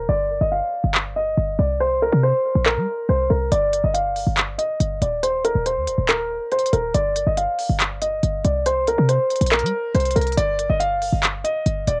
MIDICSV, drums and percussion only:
0, 0, Header, 1, 2, 480
1, 0, Start_track
1, 0, Tempo, 428571
1, 99, Time_signature, 4, 2, 24, 8
1, 13440, End_track
2, 0, Start_track
2, 0, Title_t, "Drums"
2, 1059, Note_on_c, 9, 39, 116
2, 1171, Note_off_c, 9, 39, 0
2, 2979, Note_on_c, 9, 39, 118
2, 3091, Note_off_c, 9, 39, 0
2, 3939, Note_on_c, 9, 42, 87
2, 4051, Note_off_c, 9, 42, 0
2, 4179, Note_on_c, 9, 42, 80
2, 4291, Note_off_c, 9, 42, 0
2, 4419, Note_on_c, 9, 42, 79
2, 4531, Note_off_c, 9, 42, 0
2, 4659, Note_on_c, 9, 46, 60
2, 4771, Note_off_c, 9, 46, 0
2, 4899, Note_on_c, 9, 39, 113
2, 4899, Note_on_c, 9, 42, 65
2, 5011, Note_off_c, 9, 39, 0
2, 5011, Note_off_c, 9, 42, 0
2, 5139, Note_on_c, 9, 42, 80
2, 5251, Note_off_c, 9, 42, 0
2, 5379, Note_on_c, 9, 42, 71
2, 5491, Note_off_c, 9, 42, 0
2, 5619, Note_on_c, 9, 42, 71
2, 5731, Note_off_c, 9, 42, 0
2, 5859, Note_on_c, 9, 42, 90
2, 5971, Note_off_c, 9, 42, 0
2, 6099, Note_on_c, 9, 42, 81
2, 6211, Note_off_c, 9, 42, 0
2, 6339, Note_on_c, 9, 42, 84
2, 6451, Note_off_c, 9, 42, 0
2, 6579, Note_on_c, 9, 42, 79
2, 6691, Note_off_c, 9, 42, 0
2, 6819, Note_on_c, 9, 39, 116
2, 6819, Note_on_c, 9, 42, 69
2, 6931, Note_off_c, 9, 39, 0
2, 6931, Note_off_c, 9, 42, 0
2, 7299, Note_on_c, 9, 42, 43
2, 7379, Note_off_c, 9, 42, 0
2, 7379, Note_on_c, 9, 42, 58
2, 7459, Note_off_c, 9, 42, 0
2, 7459, Note_on_c, 9, 42, 71
2, 7539, Note_off_c, 9, 42, 0
2, 7539, Note_on_c, 9, 42, 69
2, 7651, Note_off_c, 9, 42, 0
2, 7779, Note_on_c, 9, 42, 86
2, 7891, Note_off_c, 9, 42, 0
2, 8019, Note_on_c, 9, 42, 82
2, 8131, Note_off_c, 9, 42, 0
2, 8259, Note_on_c, 9, 42, 80
2, 8371, Note_off_c, 9, 42, 0
2, 8499, Note_on_c, 9, 46, 62
2, 8611, Note_off_c, 9, 46, 0
2, 8739, Note_on_c, 9, 39, 120
2, 8739, Note_on_c, 9, 42, 71
2, 8851, Note_off_c, 9, 39, 0
2, 8851, Note_off_c, 9, 42, 0
2, 8979, Note_on_c, 9, 42, 80
2, 9091, Note_off_c, 9, 42, 0
2, 9219, Note_on_c, 9, 42, 68
2, 9331, Note_off_c, 9, 42, 0
2, 9459, Note_on_c, 9, 42, 70
2, 9571, Note_off_c, 9, 42, 0
2, 9699, Note_on_c, 9, 42, 87
2, 9811, Note_off_c, 9, 42, 0
2, 9939, Note_on_c, 9, 42, 80
2, 10051, Note_off_c, 9, 42, 0
2, 10179, Note_on_c, 9, 42, 82
2, 10291, Note_off_c, 9, 42, 0
2, 10419, Note_on_c, 9, 42, 50
2, 10479, Note_off_c, 9, 42, 0
2, 10479, Note_on_c, 9, 42, 61
2, 10539, Note_off_c, 9, 42, 0
2, 10539, Note_on_c, 9, 42, 68
2, 10599, Note_off_c, 9, 42, 0
2, 10599, Note_on_c, 9, 42, 80
2, 10659, Note_on_c, 9, 39, 116
2, 10711, Note_off_c, 9, 42, 0
2, 10739, Note_on_c, 9, 42, 57
2, 10771, Note_off_c, 9, 39, 0
2, 10819, Note_off_c, 9, 42, 0
2, 10819, Note_on_c, 9, 42, 72
2, 10931, Note_off_c, 9, 42, 0
2, 11139, Note_on_c, 9, 42, 42
2, 11199, Note_off_c, 9, 42, 0
2, 11199, Note_on_c, 9, 42, 52
2, 11259, Note_off_c, 9, 42, 0
2, 11259, Note_on_c, 9, 42, 62
2, 11319, Note_off_c, 9, 42, 0
2, 11319, Note_on_c, 9, 42, 68
2, 11379, Note_off_c, 9, 42, 0
2, 11379, Note_on_c, 9, 42, 60
2, 11439, Note_off_c, 9, 42, 0
2, 11439, Note_on_c, 9, 42, 57
2, 11499, Note_off_c, 9, 42, 0
2, 11499, Note_on_c, 9, 42, 60
2, 11559, Note_off_c, 9, 42, 0
2, 11559, Note_on_c, 9, 42, 60
2, 11619, Note_off_c, 9, 42, 0
2, 11619, Note_on_c, 9, 42, 92
2, 11731, Note_off_c, 9, 42, 0
2, 11859, Note_on_c, 9, 42, 82
2, 11971, Note_off_c, 9, 42, 0
2, 12099, Note_on_c, 9, 42, 83
2, 12211, Note_off_c, 9, 42, 0
2, 12339, Note_on_c, 9, 46, 63
2, 12451, Note_off_c, 9, 46, 0
2, 12579, Note_on_c, 9, 42, 67
2, 12580, Note_on_c, 9, 39, 118
2, 12691, Note_off_c, 9, 42, 0
2, 12692, Note_off_c, 9, 39, 0
2, 12819, Note_on_c, 9, 42, 78
2, 12931, Note_off_c, 9, 42, 0
2, 13059, Note_on_c, 9, 42, 69
2, 13171, Note_off_c, 9, 42, 0
2, 13299, Note_on_c, 9, 42, 70
2, 13411, Note_off_c, 9, 42, 0
2, 13440, End_track
0, 0, End_of_file